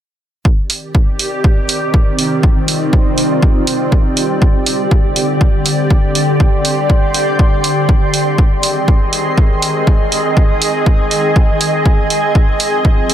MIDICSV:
0, 0, Header, 1, 4, 480
1, 0, Start_track
1, 0, Key_signature, -3, "minor"
1, 0, Tempo, 495868
1, 437, Time_signature, 4, 2, 24, 8
1, 12718, End_track
2, 0, Start_track
2, 0, Title_t, "Ambient pad"
2, 0, Program_c, 0, 92
2, 437, Note_on_c, 0, 60, 81
2, 831, Note_on_c, 0, 67, 76
2, 1241, Note_on_c, 0, 63, 89
2, 4277, Note_off_c, 0, 63, 0
2, 4623, Note_on_c, 0, 74, 82
2, 4658, Note_on_c, 0, 79, 88
2, 4777, Note_on_c, 0, 84, 78
2, 5801, Note_off_c, 0, 60, 0
2, 8114, Note_on_c, 0, 68, 76
2, 8116, Note_off_c, 0, 79, 0
2, 8117, Note_off_c, 0, 67, 0
2, 8117, Note_off_c, 0, 74, 0
2, 8347, Note_on_c, 0, 75, 89
2, 8627, Note_on_c, 0, 80, 87
2, 11955, Note_on_c, 0, 65, 71
2, 12339, Note_on_c, 0, 72, 86
2, 12568, Note_off_c, 0, 75, 0
2, 12718, Note_off_c, 0, 65, 0
2, 12718, Note_off_c, 0, 68, 0
2, 12718, Note_off_c, 0, 72, 0
2, 12718, Note_off_c, 0, 80, 0
2, 12718, Note_off_c, 0, 84, 0
2, 12718, End_track
3, 0, Start_track
3, 0, Title_t, "Ambient pad"
3, 0, Program_c, 1, 92
3, 435, Note_on_c, 1, 67, 73
3, 436, Note_on_c, 1, 51, 80
3, 436, Note_on_c, 1, 60, 72
3, 436, Note_on_c, 1, 74, 85
3, 2337, Note_off_c, 1, 67, 0
3, 2356, Note_on_c, 1, 65, 75
3, 4238, Note_off_c, 1, 51, 0
3, 4257, Note_off_c, 1, 65, 0
3, 4275, Note_on_c, 1, 50, 80
3, 4275, Note_on_c, 1, 67, 72
3, 8077, Note_off_c, 1, 50, 0
3, 8077, Note_off_c, 1, 67, 0
3, 8077, Note_off_c, 1, 74, 0
3, 8078, Note_off_c, 1, 60, 0
3, 8114, Note_on_c, 1, 68, 74
3, 8115, Note_on_c, 1, 51, 82
3, 8115, Note_on_c, 1, 60, 75
3, 8116, Note_on_c, 1, 75, 85
3, 11917, Note_off_c, 1, 51, 0
3, 11957, Note_on_c, 1, 53, 77
3, 12718, Note_off_c, 1, 53, 0
3, 12718, Note_off_c, 1, 60, 0
3, 12718, Note_off_c, 1, 68, 0
3, 12718, Note_off_c, 1, 75, 0
3, 12718, End_track
4, 0, Start_track
4, 0, Title_t, "Drums"
4, 436, Note_on_c, 9, 36, 111
4, 533, Note_off_c, 9, 36, 0
4, 675, Note_on_c, 9, 46, 94
4, 772, Note_off_c, 9, 46, 0
4, 916, Note_on_c, 9, 36, 115
4, 1013, Note_off_c, 9, 36, 0
4, 1156, Note_on_c, 9, 46, 85
4, 1252, Note_off_c, 9, 46, 0
4, 1396, Note_on_c, 9, 36, 108
4, 1492, Note_off_c, 9, 36, 0
4, 1635, Note_on_c, 9, 46, 96
4, 1732, Note_off_c, 9, 46, 0
4, 1875, Note_on_c, 9, 36, 113
4, 1972, Note_off_c, 9, 36, 0
4, 2116, Note_on_c, 9, 46, 86
4, 2213, Note_off_c, 9, 46, 0
4, 2355, Note_on_c, 9, 36, 118
4, 2452, Note_off_c, 9, 36, 0
4, 2595, Note_on_c, 9, 46, 98
4, 2692, Note_off_c, 9, 46, 0
4, 2836, Note_on_c, 9, 36, 117
4, 2932, Note_off_c, 9, 36, 0
4, 3075, Note_on_c, 9, 46, 85
4, 3172, Note_off_c, 9, 46, 0
4, 3315, Note_on_c, 9, 36, 116
4, 3412, Note_off_c, 9, 36, 0
4, 3555, Note_on_c, 9, 46, 102
4, 3652, Note_off_c, 9, 46, 0
4, 3795, Note_on_c, 9, 36, 114
4, 3892, Note_off_c, 9, 36, 0
4, 4036, Note_on_c, 9, 46, 89
4, 4132, Note_off_c, 9, 46, 0
4, 4275, Note_on_c, 9, 36, 118
4, 4372, Note_off_c, 9, 36, 0
4, 4515, Note_on_c, 9, 46, 97
4, 4612, Note_off_c, 9, 46, 0
4, 4756, Note_on_c, 9, 36, 113
4, 4852, Note_off_c, 9, 36, 0
4, 4995, Note_on_c, 9, 46, 89
4, 5092, Note_off_c, 9, 46, 0
4, 5236, Note_on_c, 9, 36, 115
4, 5332, Note_off_c, 9, 36, 0
4, 5475, Note_on_c, 9, 46, 107
4, 5572, Note_off_c, 9, 46, 0
4, 5716, Note_on_c, 9, 36, 116
4, 5812, Note_off_c, 9, 36, 0
4, 5955, Note_on_c, 9, 46, 91
4, 6052, Note_off_c, 9, 46, 0
4, 6195, Note_on_c, 9, 36, 114
4, 6292, Note_off_c, 9, 36, 0
4, 6435, Note_on_c, 9, 46, 102
4, 6532, Note_off_c, 9, 46, 0
4, 6675, Note_on_c, 9, 36, 114
4, 6772, Note_off_c, 9, 36, 0
4, 6916, Note_on_c, 9, 46, 87
4, 7012, Note_off_c, 9, 46, 0
4, 7156, Note_on_c, 9, 36, 111
4, 7252, Note_off_c, 9, 36, 0
4, 7396, Note_on_c, 9, 46, 105
4, 7492, Note_off_c, 9, 46, 0
4, 7635, Note_on_c, 9, 36, 119
4, 7732, Note_off_c, 9, 36, 0
4, 7876, Note_on_c, 9, 46, 92
4, 7973, Note_off_c, 9, 46, 0
4, 8115, Note_on_c, 9, 36, 114
4, 8212, Note_off_c, 9, 36, 0
4, 8356, Note_on_c, 9, 46, 94
4, 8452, Note_off_c, 9, 46, 0
4, 8596, Note_on_c, 9, 36, 110
4, 8692, Note_off_c, 9, 36, 0
4, 8836, Note_on_c, 9, 46, 82
4, 8932, Note_off_c, 9, 46, 0
4, 9075, Note_on_c, 9, 36, 108
4, 9172, Note_off_c, 9, 36, 0
4, 9316, Note_on_c, 9, 46, 100
4, 9413, Note_off_c, 9, 46, 0
4, 9556, Note_on_c, 9, 36, 114
4, 9652, Note_off_c, 9, 36, 0
4, 9796, Note_on_c, 9, 46, 84
4, 9893, Note_off_c, 9, 46, 0
4, 10036, Note_on_c, 9, 36, 108
4, 10132, Note_off_c, 9, 36, 0
4, 10276, Note_on_c, 9, 46, 95
4, 10373, Note_off_c, 9, 46, 0
4, 10516, Note_on_c, 9, 36, 111
4, 10612, Note_off_c, 9, 36, 0
4, 10756, Note_on_c, 9, 46, 82
4, 10853, Note_off_c, 9, 46, 0
4, 10996, Note_on_c, 9, 36, 109
4, 11092, Note_off_c, 9, 36, 0
4, 11236, Note_on_c, 9, 46, 97
4, 11332, Note_off_c, 9, 46, 0
4, 11476, Note_on_c, 9, 36, 109
4, 11573, Note_off_c, 9, 36, 0
4, 11716, Note_on_c, 9, 46, 87
4, 11813, Note_off_c, 9, 46, 0
4, 11956, Note_on_c, 9, 36, 107
4, 12053, Note_off_c, 9, 36, 0
4, 12196, Note_on_c, 9, 46, 93
4, 12293, Note_off_c, 9, 46, 0
4, 12436, Note_on_c, 9, 36, 108
4, 12533, Note_off_c, 9, 36, 0
4, 12676, Note_on_c, 9, 46, 82
4, 12718, Note_off_c, 9, 46, 0
4, 12718, End_track
0, 0, End_of_file